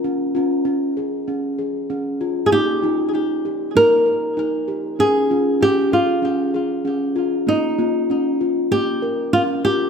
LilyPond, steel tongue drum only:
\new Staff \with { instrumentName = "Steel tongue drum" } { \time 4/4 \key des \lydian \tempo 4 = 97 << { des'8 f'8 des'8 aes'8 des'8 aes'8 des'8 f'8 | bes8 f'8 ees'8 g'8 bes8 bes'8 ees'8 g'8 | des'8 f'8 des'8 aes'8 des'8 aes'8 des'8 f'8 | bes8 f'8 des'8 f'8 r8 bes'8 des'8 f'8 | } \\ { r8 des'4. r2 | ees'8 ees'4. ees'2 | r8 des'4. r2 | r8 bes4. bes2 | } >> }